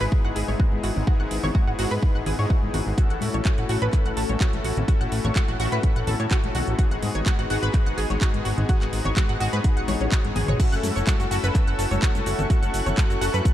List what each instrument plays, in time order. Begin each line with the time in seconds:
Already playing: supersaw synth G#2 G#3 B3 D#4 E4 G#4
0.01 analog synth bass G#1, synth pluck B4
0.12 kick
0.25 analog synth bass G#1, synth pluck F#5
0.36 analog synth bass G#1, synth pluck G#4, open hi-hat
0.48 analog synth bass G#1, synth pluck C#5, high conga
0.60 synth pluck F#4, kick
0.72 analog synth bass G#1, high conga
0.83 analog synth bass G#1, synth pluck F#4, open hi-hat
0.96 analog synth bass G#1, low conga
1.07 supersaw synth G#2 B3 D#4 E4 G#4, synth pluck F#4, kick
1.20 analog synth bass G#1, synth pluck F#5
1.31 analog synth bass G#1, open hi-hat
1.44 analog synth bass G#1, synth pluck C#5, low conga
1.55 synth pluck F#4, kick, high conga
1.67 analog synth bass G#1, synth pluck F#4
1.79 analog synth bass G#1, supersaw synth G#2 G#3 B3 D#4 E4 G#4, synth pluck F#4, open hi-hat
1.91 analog synth bass G#2, synth pluck B4
2.02 kick
2.15 analog synth bass G#1, synth pluck F#5
2.26 analog synth bass G#1, synth pluck G#4, open hi-hat, low conga
2.39 supersaw synth G#2 G#3 B3 D#4 E4 G#4, analog synth bass G#2, synth pluck C#5
2.50 synth pluck F#4, kick
2.63 analog synth bass G#1, high conga
2.74 analog synth bass G#1, synth pluck F#4, open hi-hat, low conga
2.87 analog synth bass G#1
2.98 supersaw synth A3 C#4 E4 F#4 A4, synth pluck F#4, kick, closed hi-hat
3.10 analog synth bass A1, synth pluck F#5, closed hi-hat
3.21 analog synth bass A2, open hi-hat, high conga
3.34 analog synth bass A1, synth pluck C#5, closed hi-hat
3.45 synth pluck F#4, kick, clap, closed hi-hat, high conga
3.58 analog synth bass A1, synth pluck F#4, closed hi-hat
3.69 analog synth bass A1, supersaw synth A2 A3 C#4 E4 F#4 A4, synth pluck F#4, open hi-hat
3.82 analog synth bass A1, synth pluck B4, closed hi-hat
3.93 kick, clap, closed hi-hat
4.06 analog synth bass A1, synth pluck F#5, closed hi-hat
4.17 analog synth bass A1, synth pluck A4, open hi-hat
4.29 analog synth bass A1, synth pluck C#5, closed hi-hat, high conga
4.41 synth pluck F#4, kick, clap, closed hi-hat
4.53 analog synth bass A1, closed hi-hat, high conga
4.64 analog synth bass A1, synth pluck F#4, open hi-hat
4.77 analog synth bass A1, closed hi-hat, low conga
4.88 supersaw synth A3 E4 A4, synth pluck F#4, kick, closed hi-hat
5.01 analog synth bass A1, synth pluck F#5, closed hi-hat
5.12 analog synth bass A1, open hi-hat
5.25 analog synth bass A1, synth pluck C#5, closed hi-hat, low conga
5.36 synth pluck F#4, kick, clap, closed hi-hat, high conga
5.48 analog synth bass A1, synth pluck F#4, closed hi-hat
5.60 analog synth bass A1, supersaw synth A2 A3 C#4 E4 F#4 A4, synth pluck F#4, open hi-hat
5.72 analog synth bass A2, synth pluck B4, closed hi-hat
5.83 kick, closed hi-hat
5.96 analog synth bass A1, synth pluck F#5, closed hi-hat
6.07 analog synth bass A1, synth pluck A4, open hi-hat, low conga
6.20 analog synth bass A2, synth pluck C#5, closed hi-hat
6.31 synth pluck F#4, kick, clap, closed hi-hat
6.43 analog synth bass A1, closed hi-hat, high conga
6.55 analog synth bass B1, synth pluck F#4, open hi-hat, low conga
6.67 analog synth bass A1, closed hi-hat
6.79 supersaw synth G#3 B3 D#4 F#4, synth pluck F#4, kick, closed hi-hat
6.91 analog synth bass G#1, synth pluck F#5, closed hi-hat
7.02 analog synth bass G#2, open hi-hat, high conga
7.15 analog synth bass G#1, synth pluck C#5, closed hi-hat
7.26 synth pluck F#4, kick, clap, closed hi-hat, high conga
7.39 analog synth bass G#1, synth pluck F#4, closed hi-hat
7.50 analog synth bass G#1, supersaw synth G#2 G#3 B3 D#4 F#4 G#4, synth pluck F#4, open hi-hat
7.63 analog synth bass G#1, synth pluck B4, closed hi-hat
7.74 kick, clap, closed hi-hat
7.86 analog synth bass G#1, synth pluck F#5, closed hi-hat
7.98 analog synth bass G#1, synth pluck G#4, open hi-hat
8.10 analog synth bass G#1, synth pluck C#5, closed hi-hat, high conga
8.21 synth pluck F#4, kick, clap, closed hi-hat
8.34 analog synth bass G#1, closed hi-hat, high conga
8.45 analog synth bass G#1, synth pluck F#4, open hi-hat
8.58 analog synth bass G#1, closed hi-hat, low conga
8.69 synth pluck F#4, kick, closed hi-hat
8.81 analog synth bass G#1, synth pluck F#5, clap, closed hi-hat
8.93 analog synth bass G#1, open hi-hat
9.05 analog synth bass G#1, synth pluck C#5, closed hi-hat, low conga
9.16 synth pluck F#4, kick, clap, closed hi-hat, high conga
9.29 analog synth bass G#1, synth pluck F#4, closed hi-hat
9.40 analog synth bass G#1, supersaw synth G#2 G#3 B3 D#4 F#4 G#4, synth pluck F#4, open hi-hat
9.53 analog synth bass G#2, synth pluck B4, closed hi-hat
9.64 kick, closed hi-hat
9.77 analog synth bass A1, synth pluck F#5, closed hi-hat
9.88 analog synth bass A1, synth pluck C#5, open hi-hat, high conga, low conga
10.01 analog synth bass A1, synth pluck C#4, closed hi-hat
10.12 synth pluck F#4, kick, clap, closed hi-hat
10.25 analog synth bass G#1, closed hi-hat, high conga
10.35 analog synth bass G#1, synth pluck G#4, open hi-hat, high tom, low conga
10.48 analog synth bass G#1, synth pluck C#5, closed hi-hat, mid tom
10.60 supersaw synth A3 C#4 E4 F#4 A4, synth pluck F#4, analog synth pad A4 F#5 C#6 E6, kick, closed hi-hat, crash, cabasa
10.72 analog synth bass F#1, synth pluck F#5, closed hi-hat, cabasa
10.83 analog synth bass F#2, open hi-hat, high conga, cabasa
10.96 analog synth bass F#1, synth pluck C#5, closed hi-hat, cabasa
11.07 synth pluck F#4, kick, clap, closed hi-hat, high conga, cabasa
11.20 analog synth bass F#1, synth pluck F#4, closed hi-hat, cabasa
11.31 analog synth bass F#1, supersaw synth A3 C#4 E4 F#4 A4, synth pluck F#4, open hi-hat, cabasa
11.44 analog synth bass F#1, synth pluck B4, closed hi-hat, cabasa
11.55 kick, clap, closed hi-hat, cabasa
11.67 analog synth bass F#1, synth pluck F#5, closed hi-hat
11.79 analog synth bass F#1, synth pluck A4, open hi-hat, cabasa
11.91 analog synth bass F#1, synth pluck C#5, closed hi-hat, high conga, cabasa
12.02 synth pluck F#4, kick, clap, closed hi-hat, cabasa
12.15 analog synth bass F#1, closed hi-hat, high conga, cabasa
12.26 analog synth bass F#1, synth pluck F#4, open hi-hat, cabasa
12.39 analog synth bass F#1, closed hi-hat, low conga, cabasa
12.50 supersaw synth A3 C#4 E4 F#4 A4, synth pluck F#4, analog synth pad F#6, kick, closed hi-hat, cabasa
12.62 analog synth bass F#1, synth pluck F#5, closed hi-hat, cabasa
12.74 analog synth bass F#1, open hi-hat, cabasa
12.86 analog synth bass F#1, synth pluck C#5, closed hi-hat, low conga, cabasa
12.98 synth pluck F#4, kick, clap, closed hi-hat, high conga, cabasa
13.10 analog synth bass F#1, synth pluck F#4, closed hi-hat, cabasa
13.21 analog synth bass F#1, supersaw synth A3 C#4 E4 F#4 A4, synth pluck F#4, open hi-hat, cabasa
13.34 analog synth bass F#2, synth pluck B4, closed hi-hat, cabasa
13.45 kick, closed hi-hat, cabasa